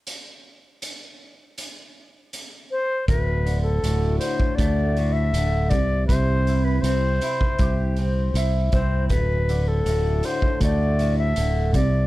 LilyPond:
<<
  \new Staff \with { instrumentName = "Flute" } { \time 4/4 \key c \lydian \tempo 4 = 80 r2. r8 c''8 | b'8. a'8. c''8 d''8. e''8. d''8 | c''8. b'16 c''2 r8 c''8 | b'8. a'8. c''8 d''8. e''8. d''8 | }
  \new Staff \with { instrumentName = "Clean electric guitar" } { \clef bass \time 4/4 \key c \lydian r1 | d,8 d8 a,8 d8 a8 a,8 d8 c8 | c8 e'8 c'8 e'8 g'8 c'8 e'8 c'8 | d,8 d8 a,8 d8 a8 a,8 d8 c8 | }
  \new Staff \with { instrumentName = "Fingered electric bass" } { \clef bass \time 4/4 \key c \lydian r1 | d,,4 d,,8 r8 d,4 d,,8 c,8 | c,4 c,8 r8 c,4 c,8 c,8 | d,,4 d,,8 r8 d,4 d,,8 c,8 | }
  \new DrumStaff \with { instrumentName = "Drums" } \drummode { \time 4/4 hh4 hh4 hh4 hh4 | <hh bd>8 hh8 hh8 hh16 bd16 <hh bd>8 hh8 hh8 <hh bd>8 | <hh bd>8 hh8 hh8 hh16 bd16 <hh bd>8 hh8 hh8 <hh bd>8 | <hh bd>8 hh8 hh8 hh16 bd16 <hh bd>8 hh8 hh8 <hh bd>8 | }
>>